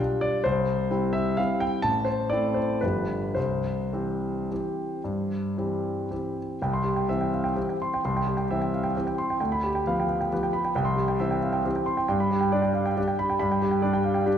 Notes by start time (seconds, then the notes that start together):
0.00 G3 D4 F4
0.21 D5
0.44 C2 C5
0.90 G3 C4 E4
1.13 E5
1.37 G3 C4 E4 F5
1.60 G5
1.82 A1 A5
2.04 C5
2.30 A3 C4 E4 D5
2.54 C5
2.81 G1 F3 D4 G4 B4
3.35 C2 C5
3.93 E3 C4 G4
4.51 E3 C4 G4
5.04 G2
5.57 E3 C4 G4
6.10 E3 C4 G4
6.62 C2 G5
6.73 C6
6.84 G4
6.96 G5
7.09 E3 C4 E5
7.21 G5
7.33 F5
7.44 G5
7.56 E3 C4 G4
7.69 G5
7.82 C6
7.94 G5
8.05 C2 C6
8.17 G5
8.27 G4
8.37 G5
8.50 E3 C4 E5
8.62 G5
8.74 F5
8.84 G5
8.97 E3 C4 G4
9.07 G5
9.18 C6
9.30 G5
9.40 D2 G5
9.52 B5
9.64 G4
9.75 G5
9.87 F3 B3 F5
10.00 G5
10.09 F5
10.21 G5
10.32 F3 B3 G4
10.43 G5
10.53 B5
10.65 G5
10.75 C2 G5
10.85 C6
10.96 G4
11.08 G5
11.20 E3 C4 E5
11.31 G5
11.42 F5
11.53 G5
11.64 E3 C4 G4
11.76 G5
11.86 C6
11.97 G5
12.08 G2 G5
12.20 B5
12.31 G4
12.41 G5
12.52 G3 D4 D5
12.62 G5
12.73 F5
12.86 G5
12.97 G3 D4 G4
13.08 G5
13.19 B5
13.30 G5
13.40 G2 B5
13.52 G5
13.62 G4
13.71 G5
13.82 G3 D4 D5
13.93 G5
14.04 F5
14.14 G5
14.26 G3 D4 G4